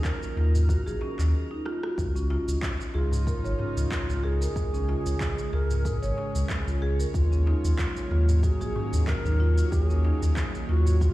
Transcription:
Already playing: synth drone D#3 F#3 A#3 D#4, synth texture A#4
0.04 bansuri A#4, kick, clap, shaker
0.23 darbuka ka, shaker
0.36 analog synth bass D#2, marimba F4, darbuka tek
0.54 darbuka dum, shaker
0.68 marimba F#4, kick, darbuka dum, shaker
0.86 analog synth bass A#1, marimba G#4, darbuka ka, shaker
1.01 marimba C#4, darbuka tek
1.19 analog synth bass D#2, clap, darbuka ka, shaker
1.51 marimba D#4
1.66 marimba F4, cross-stick
1.83 marimba F#4, cross-stick
1.98 analog synth bass C#2, synth drone C#3 G#3 D#4 C#5, kick, shaker
2.16 marimba C#4, shaker
2.30 marimba F4, darbuka tek
2.48 analog synth bass C#2, shaker
2.62 kick, clap, shaker
2.80 darbuka ka, shaker
2.94 analog synth bass C#2, bansuri F4, marimba G#4, darbuka tek
3.11 darbuka dum, shaker
3.27 marimba A#4, kick, shaker
3.44 analog synth bass G#1, marimba C#5, darbuka ka, shaker
3.59 marimba C#4, darbuka dum
3.77 analog synth bass C#2, shaker
3.91 kick, clap, darbuka dum, shaker
4.09 analog synth bass C#2, marimba F4, shaker
4.24 marimba G#4, bansuri A#4
4.28 bansuri G#4
4.41 marimba A#4, darbuka ka, shaker
4.56 analog synth bass C#2, synth drone C#4, kick, shaker
4.74 marimba C#4, shaker
4.88 marimba F4, darbuka tek
5.06 analog synth bass C#2, shaker
5.21 kick, clap, shaker
5.38 darbuka ka, shaker
5.53 analog synth bass C#2, marimba G#4, bansuri A#4, darbuka tek
5.71 darbuka dum, shaker
5.85 bansuri G#4, marimba A#4, kick, darbuka dum, shaker
6.03 analog synth bass G#1, marimba C#5, darbuka ka, shaker
6.17 marimba C#4, darbuka tek
6.35 analog synth bass C#2, darbuka ka, shaker
6.50 kick, clap, shaker
6.67 analog synth bass C#2, marimba F4, shaker
6.82 marimba G#4
7.00 marimba A#4, shaker
7.14 analog synth bass D#2, synth drone D#3 F#3 A#3, bansuri F4, kick, shaker
7.32 marimba C#4, shaker
7.47 marimba D#4, darbuka tek
7.64 analog synth bass D#2, shaker
7.79 kick, clap, shaker
7.97 darbuka ka, shaker
8.11 analog synth bass D#2, marimba F4, darbuka tek
8.29 darbuka dum, shaker
8.43 marimba F#4, bansuri G#4, kick, shaker
8.60 analog synth bass A#1, marimba G#4, darbuka ka, shaker
8.76 marimba C#4, darbuka dum
8.93 analog synth bass D#2, shaker
9.07 bansuri A#4, kick, clap, darbuka dum, shaker
9.25 analog synth bass D#2, marimba D#4, shaker
9.40 marimba F4
9.57 marimba F#4, darbuka ka, shaker
9.71 analog synth bass D#2, bansuri G4, kick, shaker
9.85 bansuri G#4
9.90 marimba C#4, shaker
10.05 marimba D#4, darbuka tek
10.22 analog synth bass D#2, shaker
10.37 kick, clap, shaker
10.54 darbuka ka, shaker
10.69 analog synth bass D#2, marimba F4, bansuri F#4, darbuka tek
10.86 darbuka dum, shaker
11.00 bansuri F4, marimba F#4, kick, darbuka dum, shaker

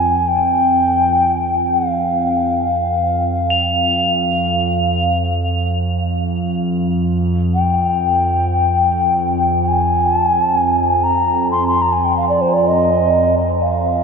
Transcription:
Already playing: ambient pad F2, ocarina G#5
0.28 ocarina G5
1.74 ocarina F5
3.02 ambient pad F2
3.50 crotales F7
7.54 ocarina G5
9.68 ocarina G#5
10.16 ocarina A5
10.29 ocarina G#5
10.43 ocarina A5
10.56 ocarina G#5
11.03 ocarina A#5
11.51 ocarina C6
11.68 ocarina C6
11.82 ocarina A#5
11.93 ocarina G#5
12.04 ocarina G5
12.17 ocarina F5
12.29 ocarina D5
12.41 ocarina C5
12.53 ocarina D5
12.67 ocarina D#5
13.62 ocarina F5

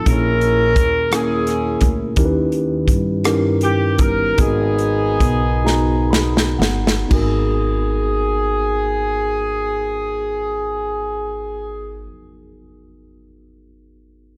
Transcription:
0.06 upright bass A#1, tine electric piano A#2 A#3 C#4 E4 G#4 A#4, horn section C#4 E4 A#4, kick, closed hi-hat
0.41 closed hi-hat
0.76 upright bass D#2, kick, closed hi-hat
1.11 tine electric piano A#3 C#4 E4 G#4 A#4, horn section C#4 E4 G#4, cross-stick, closed hi-hat
1.47 cross-stick, closed hi-hat
1.81 upright bass D2, kick, closed hi-hat
2.16 upright bass D#2, tine electric piano D#3 C#4 D#4 E4 G4 A#4, kick, closed hi-hat
2.25 tine electric piano B4
2.52 closed hi-hat
2.88 upright bass G2, kick, closed hi-hat
3.24 tine electric piano C#4 D#4 E4 G4 A#4, cross-stick, closed hi-hat
3.61 horn section G4, closed hi-hat
3.98 upright bass G1, horn section A#4, kick, closed hi-hat
4.38 upright bass G#1, tine electric piano G#2 B3 D#4 F#4 G#4 A#4, horn section B3 D#4 G#4, kick, closed hi-hat
4.79 closed hi-hat
5.20 upright bass B1, kick, closed hi-hat
5.64 tine electric piano B3 D#4 F#4 G#4 A#5, snare
6.11 tine electric piano B5, snare
6.37 snare
6.59 upright bass G1, tine electric piano F#5, snare
6.87 snare
7.07 upright bass G#1, tine electric piano G#1 B3 D#4 F#4, kick, crash
7.12 horn section G#4, tine electric piano G#4 A#4

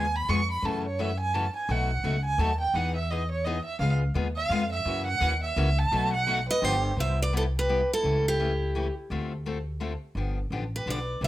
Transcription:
Already playing: upright bass D#2, violin G#5
0.16 violin B5
0.28 upright bass F2, steel-string acoustic guitar C#3 G#3 B3 F4 G#4, violin C#6
0.51 violin B5
0.62 upright bass F#2, steel-string acoustic guitar C#3 E3 A3 C#4 F#4, violin A5
0.87 violin C#5
0.99 steel-string acoustic guitar C#3 E3 A3 C#4 F#4, violin E5
1.20 violin G#5
1.34 steel-string acoustic guitar C#3 E3 A3 C#4 F#4, violin A5
1.56 violin G#5
1.69 upright bass B1, steel-string acoustic guitar B2 F#3 A3 D#4 F#4, violin F#5
2.04 upright bass C#2, steel-string acoustic guitar B2 F#3 A3 D#4 F#4
2.25 violin G#5
2.38 upright bass D#2, steel-string acoustic guitar B2 F#3 A3 D#4 F#4, violin A5
2.61 violin G5
2.74 upright bass E2, steel-string acoustic guitar E3 B3 D#4 G#4, violin F#5
2.96 violin E5
3.11 steel-string acoustic guitar E3 B3 D#4 G#4, violin D#5
3.32 violin C#5
3.45 steel-string acoustic guitar E3 B3 D#4 G#4, violin D#5
3.65 violin E5
3.79 upright bass C#2, steel-string acoustic guitar C#3 G#3 B3 F4 G#4, violin F5
4.14 upright bass D#2, steel-string acoustic guitar C#3 G#3 B3 F4 G#4
4.36 violin F5
4.49 upright bass F2, steel-string acoustic guitar C#3 G#3 B3 F4 G#4
4.72 violin E5
4.85 upright bass F#2, steel-string acoustic guitar C#3 E3 A#3 C#4 F#4
5.06 violin F#5
5.20 upright bass D#2, steel-string acoustic guitar C#3 E3 A#3 C#4 F#4
5.44 violin E5
5.56 upright bass C#2, steel-string acoustic guitar C#3 E3 A#3 C#4 F#4
5.79 violin A5
5.92 upright bass B1, steel-string acoustic guitar B2 F#3 A3 D#4 F#4
6.13 violin F#5
6.27 steel-string acoustic guitar B2 F#3 A3 D#4 F#4
6.49 violin B4, steel-string acoustic guitar D#5
6.62 upright bass G1, steel-string acoustic guitar D3 F3 B3 D4 G4 C5, violin G4
6.97 upright bass C2, steel-string acoustic guitar C3 G3 B3 E4 G4 E5, violin C5
7.22 violin B4, steel-string acoustic guitar D5
7.33 steel-string acoustic guitar C3 G3 B3 E4 G4, violin E4
7.37 steel-string acoustic guitar A4
7.58 violin G4, steel-string acoustic guitar B4
7.69 steel-string acoustic guitar C3 G3 B3 E4 G4
7.93 violin E4, steel-string acoustic guitar A4
8.03 upright bass C#2, steel-string acoustic guitar C#3 E3 A3 C#4 G4
8.28 violin E4, steel-string acoustic guitar G4
8.39 steel-string acoustic guitar C#3 E3 A3 C#4 G4
8.75 steel-string acoustic guitar C#3 E3 A3 C#4 G4
9.10 upright bass D2, steel-string acoustic guitar D3 A3 C4 F4 A4
9.46 steel-string acoustic guitar D3 A3 C4 F4 A4
9.80 steel-string acoustic guitar D3 A3 C4 F4 A4
10.15 upright bass G1, steel-string acoustic guitar D3 F3 B3 D4 G4
10.50 upright bass A1, steel-string acoustic guitar D3 F3 B3 D4 G4
10.76 violin G4, steel-string acoustic guitar B4
10.86 upright bass B1, steel-string acoustic guitar D3 F3 B3 D4 G4, violin B4
10.90 steel-string acoustic guitar D5
11.21 upright bass C2, steel-string acoustic guitar C3 G3 B3 E4 G4 E5, violin C5

